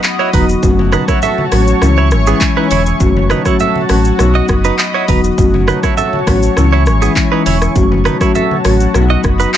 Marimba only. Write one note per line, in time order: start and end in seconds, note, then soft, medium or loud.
0.00 0.26 F#3 medium
0.00 0.26 B3 medium
0.00 0.27 D#4 medium
0.00 0.27 F#4 loud
0.33 0.61 F#3 medium
0.33 0.61 B3 medium
0.33 0.61 D#4 medium
0.33 0.61 F#4 medium
0.63 1.45 F#3 loud
0.63 1.45 A3 medium
0.63 1.45 C#4 medium
0.63 1.45 F#4 loud
1.52 1.79 F#3 medium
1.52 1.79 A3 medium
1.52 1.79 C#4 medium
1.52 1.80 F#4 medium
1.82 2.23 E3 medium
1.82 2.23 G#3 medium
1.82 2.23 C#4 medium
1.82 2.23 E4 loud
2.27 2.43 E3 medium
2.27 2.43 G#3 medium
2.27 2.43 C#4 medium
2.27 2.43 E4 medium
2.56 2.72 E3 medium
2.56 2.72 G#3 medium
2.56 2.72 C#4 medium
2.56 2.73 E4 medium
3.00 3.42 F#3 medium
3.00 3.42 A3 medium
3.00 3.42 C#4 medium
3.00 3.42 F#4 loud
3.45 3.86 F#3 medium
3.45 3.86 A3 medium
3.45 3.86 C#4 medium
3.45 3.86 F#4 medium
3.89 4.17 F#3 medium
3.89 4.17 A3 medium
3.89 4.17 C#4 medium
3.89 4.17 F#4 medium
4.19 5.01 F#3 medium
4.19 5.01 B3 medium
4.19 5.02 D#4 medium
4.19 5.02 F#4 loud
5.08 5.36 F#3 medium
5.08 5.36 B3 medium
5.08 5.36 D#4 medium
5.08 5.36 F#4 medium
5.38 6.20 F#3 medium
5.38 6.20 A3 medium
5.38 6.20 C#4 medium
5.38 6.21 F#4 loud
6.27 6.54 F#3 medium
6.27 6.55 A3 medium
6.27 6.55 C#4 medium
6.27 6.55 F#4 medium
6.56 6.98 E3 medium
6.56 6.98 G#3 medium
6.56 6.98 C#4 medium
6.56 6.98 E4 loud
7.02 7.18 E3 medium
7.02 7.18 G#3 medium
7.02 7.18 C#4 medium
7.02 7.18 E4 medium
7.31 7.47 E3 medium
7.31 7.48 G#3 medium
7.31 7.48 C#4 medium
7.31 7.48 E4 medium
7.75 8.17 F#3 medium
7.75 8.17 A3 medium
7.75 8.17 C#4 medium
7.75 8.17 F#4 loud
8.20 8.61 F#3 medium
8.20 8.61 A3 medium
8.20 8.61 C#4 medium
8.20 8.61 F#4 medium
8.65 8.92 F#3 medium
8.65 8.92 A3 medium
8.65 8.92 C#4 medium
8.65 8.92 F#4 medium
8.94 9.57 F#3 medium
8.94 9.57 B3 medium
8.94 9.57 D#4 medium
8.94 9.57 F#4 loud